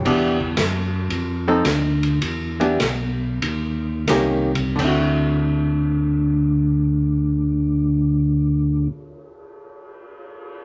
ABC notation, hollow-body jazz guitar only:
X:1
M:4/4
L:1/8
Q:"Swing" 1/4=82
K:Dmix
V:1 name="Hollow-body jazz guitar"
[E,B,DG] z4 [=F,C_EA] z2 | z [E,B,DG] z4 [_E,_B,_DG] z | [D,CEF]8- | [D,CEF]8 |]